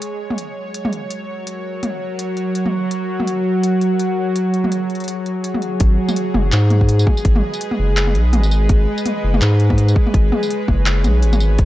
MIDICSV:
0, 0, Header, 1, 4, 480
1, 0, Start_track
1, 0, Key_signature, 5, "minor"
1, 0, Tempo, 361446
1, 25, Time_signature, 4, 2, 24, 8
1, 15471, End_track
2, 0, Start_track
2, 0, Title_t, "Synth drone"
2, 0, Program_c, 0, 95
2, 0, Note_on_c, 0, 73, 83
2, 31, Note_on_c, 0, 54, 69
2, 195, Note_on_c, 0, 66, 72
2, 903, Note_on_c, 0, 70, 75
2, 5049, Note_on_c, 0, 68, 75
2, 5209, Note_off_c, 0, 70, 0
2, 7706, Note_off_c, 0, 73, 0
2, 7708, Note_off_c, 0, 54, 0
2, 7712, Note_on_c, 0, 56, 88
2, 8278, Note_on_c, 0, 71, 88
2, 8296, Note_on_c, 0, 75, 78
2, 9038, Note_off_c, 0, 66, 0
2, 12224, Note_on_c, 0, 73, 80
2, 12386, Note_off_c, 0, 75, 0
2, 15382, Note_off_c, 0, 71, 0
2, 15386, Note_off_c, 0, 68, 0
2, 15389, Note_off_c, 0, 56, 0
2, 15471, Note_off_c, 0, 73, 0
2, 15471, End_track
3, 0, Start_track
3, 0, Title_t, "Sub bass"
3, 0, Program_c, 1, 38
3, 7706, Note_on_c, 1, 32, 101
3, 7930, Note_off_c, 1, 32, 0
3, 8423, Note_on_c, 1, 30, 83
3, 8648, Note_off_c, 1, 30, 0
3, 8665, Note_on_c, 1, 44, 102
3, 9372, Note_off_c, 1, 44, 0
3, 9628, Note_on_c, 1, 32, 99
3, 9850, Note_off_c, 1, 32, 0
3, 10345, Note_on_c, 1, 30, 82
3, 10823, Note_on_c, 1, 35, 98
3, 10842, Note_off_c, 1, 30, 0
3, 11066, Note_on_c, 1, 32, 95
3, 11086, Note_off_c, 1, 35, 0
3, 11533, Note_off_c, 1, 32, 0
3, 11547, Note_on_c, 1, 32, 102
3, 11770, Note_off_c, 1, 32, 0
3, 12268, Note_on_c, 1, 30, 85
3, 12490, Note_off_c, 1, 30, 0
3, 12503, Note_on_c, 1, 44, 101
3, 13211, Note_off_c, 1, 44, 0
3, 13468, Note_on_c, 1, 32, 100
3, 13690, Note_off_c, 1, 32, 0
3, 14188, Note_on_c, 1, 30, 84
3, 14663, Note_on_c, 1, 35, 98
3, 14683, Note_off_c, 1, 30, 0
3, 14900, Note_on_c, 1, 32, 96
3, 14920, Note_off_c, 1, 35, 0
3, 15370, Note_off_c, 1, 32, 0
3, 15387, Note_on_c, 1, 30, 102
3, 15471, Note_off_c, 1, 30, 0
3, 15471, End_track
4, 0, Start_track
4, 0, Title_t, "Drums"
4, 24, Note_on_c, 9, 42, 70
4, 156, Note_off_c, 9, 42, 0
4, 404, Note_on_c, 9, 45, 46
4, 505, Note_on_c, 9, 42, 59
4, 537, Note_off_c, 9, 45, 0
4, 637, Note_off_c, 9, 42, 0
4, 988, Note_on_c, 9, 42, 71
4, 1121, Note_off_c, 9, 42, 0
4, 1127, Note_on_c, 9, 45, 69
4, 1231, Note_on_c, 9, 42, 33
4, 1260, Note_off_c, 9, 45, 0
4, 1363, Note_off_c, 9, 42, 0
4, 1468, Note_on_c, 9, 42, 58
4, 1601, Note_off_c, 9, 42, 0
4, 1952, Note_on_c, 9, 42, 68
4, 2084, Note_off_c, 9, 42, 0
4, 2429, Note_on_c, 9, 42, 58
4, 2429, Note_on_c, 9, 45, 49
4, 2562, Note_off_c, 9, 42, 0
4, 2562, Note_off_c, 9, 45, 0
4, 2908, Note_on_c, 9, 42, 71
4, 3041, Note_off_c, 9, 42, 0
4, 3145, Note_on_c, 9, 42, 33
4, 3278, Note_off_c, 9, 42, 0
4, 3388, Note_on_c, 9, 42, 57
4, 3521, Note_off_c, 9, 42, 0
4, 3527, Note_on_c, 9, 45, 49
4, 3660, Note_off_c, 9, 45, 0
4, 3866, Note_on_c, 9, 42, 68
4, 3998, Note_off_c, 9, 42, 0
4, 4246, Note_on_c, 9, 45, 51
4, 4349, Note_on_c, 9, 42, 59
4, 4379, Note_off_c, 9, 45, 0
4, 4481, Note_off_c, 9, 42, 0
4, 4827, Note_on_c, 9, 42, 72
4, 4960, Note_off_c, 9, 42, 0
4, 5065, Note_on_c, 9, 42, 35
4, 5198, Note_off_c, 9, 42, 0
4, 5305, Note_on_c, 9, 42, 60
4, 5438, Note_off_c, 9, 42, 0
4, 5786, Note_on_c, 9, 42, 75
4, 5919, Note_off_c, 9, 42, 0
4, 6026, Note_on_c, 9, 42, 35
4, 6159, Note_off_c, 9, 42, 0
4, 6165, Note_on_c, 9, 45, 51
4, 6266, Note_on_c, 9, 42, 64
4, 6298, Note_off_c, 9, 45, 0
4, 6398, Note_off_c, 9, 42, 0
4, 6504, Note_on_c, 9, 42, 16
4, 6575, Note_off_c, 9, 42, 0
4, 6575, Note_on_c, 9, 42, 20
4, 6643, Note_off_c, 9, 42, 0
4, 6643, Note_on_c, 9, 42, 24
4, 6693, Note_off_c, 9, 42, 0
4, 6693, Note_on_c, 9, 42, 29
4, 6745, Note_off_c, 9, 42, 0
4, 6745, Note_on_c, 9, 42, 78
4, 6878, Note_off_c, 9, 42, 0
4, 6987, Note_on_c, 9, 42, 35
4, 7119, Note_off_c, 9, 42, 0
4, 7225, Note_on_c, 9, 42, 64
4, 7358, Note_off_c, 9, 42, 0
4, 7363, Note_on_c, 9, 45, 53
4, 7464, Note_on_c, 9, 42, 36
4, 7495, Note_off_c, 9, 45, 0
4, 7597, Note_off_c, 9, 42, 0
4, 7703, Note_on_c, 9, 42, 81
4, 7708, Note_on_c, 9, 36, 120
4, 7835, Note_off_c, 9, 42, 0
4, 7841, Note_off_c, 9, 36, 0
4, 8081, Note_on_c, 9, 45, 55
4, 8081, Note_on_c, 9, 54, 67
4, 8186, Note_on_c, 9, 42, 70
4, 8214, Note_off_c, 9, 45, 0
4, 8214, Note_off_c, 9, 54, 0
4, 8318, Note_off_c, 9, 42, 0
4, 8424, Note_on_c, 9, 45, 84
4, 8557, Note_off_c, 9, 45, 0
4, 8662, Note_on_c, 9, 39, 122
4, 8662, Note_on_c, 9, 42, 85
4, 8795, Note_off_c, 9, 39, 0
4, 8795, Note_off_c, 9, 42, 0
4, 8903, Note_on_c, 9, 42, 40
4, 8903, Note_on_c, 9, 45, 58
4, 9036, Note_off_c, 9, 42, 0
4, 9036, Note_off_c, 9, 45, 0
4, 9045, Note_on_c, 9, 36, 62
4, 9145, Note_on_c, 9, 42, 70
4, 9178, Note_off_c, 9, 36, 0
4, 9278, Note_off_c, 9, 42, 0
4, 9287, Note_on_c, 9, 54, 68
4, 9387, Note_on_c, 9, 36, 104
4, 9389, Note_on_c, 9, 45, 57
4, 9420, Note_off_c, 9, 54, 0
4, 9520, Note_off_c, 9, 36, 0
4, 9522, Note_off_c, 9, 45, 0
4, 9525, Note_on_c, 9, 54, 66
4, 9627, Note_on_c, 9, 36, 123
4, 9627, Note_on_c, 9, 42, 80
4, 9658, Note_off_c, 9, 54, 0
4, 9759, Note_off_c, 9, 42, 0
4, 9760, Note_off_c, 9, 36, 0
4, 9768, Note_on_c, 9, 45, 82
4, 9901, Note_off_c, 9, 45, 0
4, 10007, Note_on_c, 9, 54, 64
4, 10105, Note_on_c, 9, 42, 69
4, 10140, Note_off_c, 9, 54, 0
4, 10238, Note_off_c, 9, 42, 0
4, 10243, Note_on_c, 9, 45, 52
4, 10376, Note_off_c, 9, 45, 0
4, 10584, Note_on_c, 9, 39, 126
4, 10584, Note_on_c, 9, 42, 86
4, 10717, Note_off_c, 9, 39, 0
4, 10717, Note_off_c, 9, 42, 0
4, 10722, Note_on_c, 9, 45, 54
4, 10823, Note_on_c, 9, 42, 40
4, 10855, Note_off_c, 9, 45, 0
4, 10956, Note_off_c, 9, 42, 0
4, 11063, Note_on_c, 9, 42, 70
4, 11063, Note_on_c, 9, 45, 82
4, 11195, Note_off_c, 9, 42, 0
4, 11195, Note_off_c, 9, 45, 0
4, 11201, Note_on_c, 9, 54, 66
4, 11306, Note_off_c, 9, 54, 0
4, 11306, Note_on_c, 9, 54, 65
4, 11438, Note_off_c, 9, 54, 0
4, 11544, Note_on_c, 9, 42, 82
4, 11544, Note_on_c, 9, 45, 52
4, 11546, Note_on_c, 9, 36, 127
4, 11677, Note_off_c, 9, 42, 0
4, 11677, Note_off_c, 9, 45, 0
4, 11679, Note_off_c, 9, 36, 0
4, 11922, Note_on_c, 9, 54, 63
4, 12026, Note_on_c, 9, 42, 70
4, 12026, Note_on_c, 9, 45, 52
4, 12055, Note_off_c, 9, 54, 0
4, 12159, Note_off_c, 9, 42, 0
4, 12159, Note_off_c, 9, 45, 0
4, 12404, Note_on_c, 9, 45, 80
4, 12505, Note_on_c, 9, 39, 126
4, 12505, Note_on_c, 9, 42, 86
4, 12537, Note_off_c, 9, 45, 0
4, 12638, Note_off_c, 9, 39, 0
4, 12638, Note_off_c, 9, 42, 0
4, 12745, Note_on_c, 9, 42, 40
4, 12878, Note_off_c, 9, 42, 0
4, 12884, Note_on_c, 9, 36, 64
4, 12884, Note_on_c, 9, 45, 52
4, 12988, Note_on_c, 9, 42, 69
4, 13017, Note_off_c, 9, 36, 0
4, 13017, Note_off_c, 9, 45, 0
4, 13121, Note_off_c, 9, 42, 0
4, 13126, Note_on_c, 9, 54, 64
4, 13226, Note_on_c, 9, 36, 112
4, 13259, Note_off_c, 9, 54, 0
4, 13359, Note_off_c, 9, 36, 0
4, 13366, Note_on_c, 9, 45, 51
4, 13466, Note_on_c, 9, 36, 126
4, 13468, Note_on_c, 9, 42, 78
4, 13499, Note_off_c, 9, 45, 0
4, 13599, Note_off_c, 9, 36, 0
4, 13601, Note_off_c, 9, 42, 0
4, 13707, Note_on_c, 9, 45, 77
4, 13840, Note_off_c, 9, 45, 0
4, 13848, Note_on_c, 9, 54, 64
4, 13951, Note_on_c, 9, 42, 66
4, 13981, Note_off_c, 9, 54, 0
4, 14084, Note_off_c, 9, 42, 0
4, 14185, Note_on_c, 9, 45, 51
4, 14186, Note_on_c, 9, 36, 65
4, 14318, Note_off_c, 9, 45, 0
4, 14319, Note_off_c, 9, 36, 0
4, 14425, Note_on_c, 9, 39, 127
4, 14425, Note_on_c, 9, 42, 81
4, 14558, Note_off_c, 9, 39, 0
4, 14558, Note_off_c, 9, 42, 0
4, 14666, Note_on_c, 9, 42, 38
4, 14666, Note_on_c, 9, 45, 52
4, 14666, Note_on_c, 9, 54, 37
4, 14798, Note_off_c, 9, 42, 0
4, 14798, Note_off_c, 9, 45, 0
4, 14798, Note_off_c, 9, 54, 0
4, 14907, Note_on_c, 9, 42, 68
4, 15040, Note_off_c, 9, 42, 0
4, 15044, Note_on_c, 9, 45, 75
4, 15044, Note_on_c, 9, 54, 65
4, 15144, Note_off_c, 9, 54, 0
4, 15144, Note_on_c, 9, 54, 65
4, 15177, Note_off_c, 9, 45, 0
4, 15277, Note_off_c, 9, 54, 0
4, 15385, Note_on_c, 9, 42, 75
4, 15388, Note_on_c, 9, 36, 120
4, 15471, Note_off_c, 9, 36, 0
4, 15471, Note_off_c, 9, 42, 0
4, 15471, End_track
0, 0, End_of_file